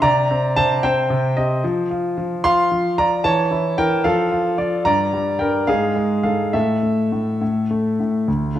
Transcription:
grand piano
0.02 C3 D5 A#5
0.31 C4
0.56 C3 C5 A5
0.83 C4 C5 G5
1.10 C3
1.37 C4 G4 D#5
1.64 F3
1.90 F4
2.18 F3
2.44 F4 F5 C6
2.72 F3
2.98 F4 D5 A#5
3.24 E3 C#5 A5
3.51 E4
3.78 E3 A#4 G5
4.04 F3 A4 F5
4.32 F4
4.58 F3 F4 D5
4.85 G2 D5 A#5
5.13 G3
5.39 G2 A#4 G5
5.67 G#2 G#4 F5
5.96 G#3
6.23 G#2 A4 F5
6.53 A2 A4 E5
6.83 A3
7.12 A2
7.41 A2
7.71 A3
8.00 A2
8.28 D2
8.55 A3 D4 F4

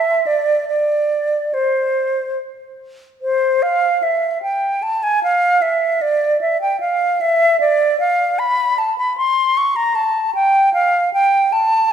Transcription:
flute
Already playing: E5
0.27 D5
0.68 D5
1.54 C5
3.22 C5
3.63 F5
4.03 E5
4.42 G5
4.83 A5
5.03 G#5
5.23 F5
5.62 E5
6.02 D5
6.41 E5
6.62 G5
6.80 F5
7.21 E5
7.61 D5
8.00 F5
8.39 B5
8.78 A5
8.98 B5
9.17 C6
9.57 C#6
9.76 A#5
9.95 A5
10.35 G5
10.74 F5
11.14 G5
11.53 A5

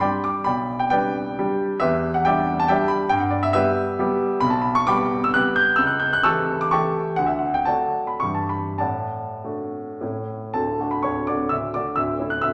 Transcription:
grand piano
0.00 G3 D4 G4 D5 G5 B5
0.24 D6
0.44 B1 D5 G5 B5
0.79 G5
0.90 G3 D4 G4 B4 D5 G5
1.39 G3 D4 G4
1.80 E2 G4 B4 E5
2.14 F#5
2.25 G3 D4 G4 D5 E5 G5
2.60 A5
2.68 G3 D4 G4 D5 E5 G5
2.88 B5
3.09 G2 G5
3.20 F#5
3.31 D5
3.43 E5
3.53 G3 B3 G4 B4 E5
3.99 G3 B3 G4
4.40 B1 B5
4.50 A5
4.62 B5
4.75 C#6
4.87 G3 B3 G4 G5 B5 D6
5.24 E6
5.34 G3 B3 G4 F#6
5.56 G6
5.76 C#2 E6
5.87 F#6
6.00 G6
6.13 F#6
6.23 E3 A3 G4 A5 C#6 E6
6.61 D6
6.71 E3 A3 G4 G5 A5 C#6
7.16 D2 F#5
7.26 E5
7.39 F#5
7.54 G5
7.65 F#3 A3 F#4 D5 F#5 A5
8.07 B5
8.20 G2 E3 G3 G4 C#6
8.35 A5
8.49 B5
8.78 A2 D5 F#5 A5
9.44 A3 D4 F#4
10.01 A2 A3 C#4 E4
10.54 D1 D2 A4 A5
10.80 A3 D4 F#4
10.91 B5
11.03 D1 D2 C#5 C#6
11.27 A3 D4 F#4 D5 D6
11.49 D1 D2 E5 E6
11.74 A3 D4 F#4 D5 D6
11.96 D1 D2 E5 E6
12.19 A3 C#4 E4
12.30 F#6
12.42 D1 D2 E5 E6

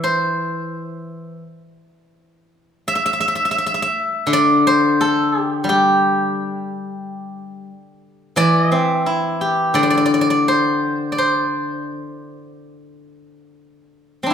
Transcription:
guzheng
Already playing: E3 D5 E5
0.04 C5
2.88 E5
2.95 E5
3.06 E5
3.13 E5
3.20 E5
3.28 E5
3.35 E5
3.45 E5
3.51 E5
3.58 E5
3.66 E5
3.74 E5
3.82 E5
4.27 D3
4.33 D5
4.67 C5
5.01 A4
5.41 G4
5.64 G3
5.69 G4
8.36 E3 D5
8.62 D#5
8.72 C4
8.77 E5
9.06 E4
9.41 G4
9.74 D3 D5
9.83 D5
9.90 D5
9.97 D5
10.06 D5
10.14 D5
10.21 D5
10.30 D5
10.48 C5
11.12 D5
11.18 C5
14.23 C4 D4
14.30 E4

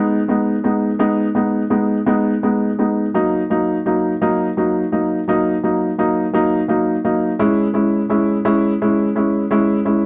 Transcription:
felt piano
Already playing: G#3 B3 D#4
0.28 G#3 B3 D#4
0.64 G#3 B3 D#4
0.99 G#3 B3 D#4
1.35 G#3 B3 D#4
1.70 G#3 B3 D#4
2.06 G#3 B3 D#4
2.43 G#3 B3 D#4
2.79 G#3 B3 D#4
3.14 F#3 A#3 D#4
3.50 F#3 A#3 D#4
3.86 F#3 A#3 D#4
4.22 F#3 A#3 D#4
4.57 F#3 A#3 D#4
4.92 F#3 A#3 D#4
5.28 F#3 A#3 D#4
5.63 F#3 A#3 D#4
5.98 F#3 A#3 D#4
6.34 F#3 A#3 D#4
6.68 F#3 A#3 D#4
7.05 F#3 A#3 D#4
7.39 G#3 C#4 E4
7.74 G#3 C#4 E4
8.10 G#3 C#4 E4
8.45 G#3 C#4 E4
8.82 G#3 C#4 E4
9.15 G#3 C#4 E4
9.51 G#3 C#4 E4
9.85 G#3 C#4 E4

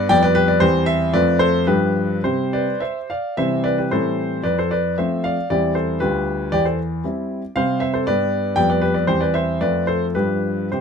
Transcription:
grand piano
0.09 F2 G3 B3 G4 D5 G5
0.23 B4 D5
0.35 G4 B4
0.48 B4 D5
0.60 E2 G3 C4 G4 C5
0.86 C5 E5
1.13 F2 A3 C4 F4 B4 D5
1.39 A4 C5
1.67 G2 F3 G3 D4 G4 B4
2.24 C3 G3 C4 G4 C5
2.53 B4 D5
2.80 C5 E5
3.10 D5 F5
3.37 C3 E3 G3 C4 C5 E5
3.64 B4 D5
3.78 G4 B4
3.91 A2 E3 G3 C4 A4 C5
4.43 F2 B4 D5
4.59 A4 C5
4.71 B4 D5
4.98 F3 A3 C4 C5 E5
5.24 D5 F5
5.50 E2 G3 C4 E4 G4 D5
5.75 A4 C5
6.00 D2 G3 D4 F4 G4 B4
6.52 E2 G4 D5
6.65 A4 C5
7.04 G3 C4 E4
7.56 C3 G3 C4 G4 C5 F5
7.80 C5 E5
7.94 A4 C5
8.07 G2 G3 B3 G4 B4 D5
8.56 F2 G3 B3 G4 D5 G5
8.70 B4 D5
8.82 G4 B4
8.94 B4 D5
9.07 E2 G3 C4 G4 C5
9.21 B4 D5
9.34 C5 E5
9.61 F2 A3 C4 F4 B4 D5
9.87 A4 C5
10.15 G2 F3 G3 D4 G4 B4
10.72 C3 G4 C5

